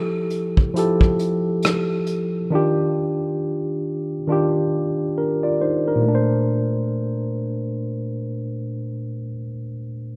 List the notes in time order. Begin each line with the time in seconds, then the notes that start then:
Already playing: F3 E4 G4 A4
0.30 closed hi-hat
0.57 kick
0.74 F3 E4 G4, closed hi-hat
0.79 A4
1.01 kick, cross-stick
1.19 closed hi-hat
1.62 cross-stick, closed hi-hat
2.07 closed hi-hat
2.50 D#3 D4 F4
2.55 G4
4.27 D#3 D4 F4
4.32 G4
5.18 D4 A#4
5.43 F4 D5
5.61 D#4 C5
5.88 D4 A#4
5.96 A#2
6.02 A3
6.09 D4
6.15 C5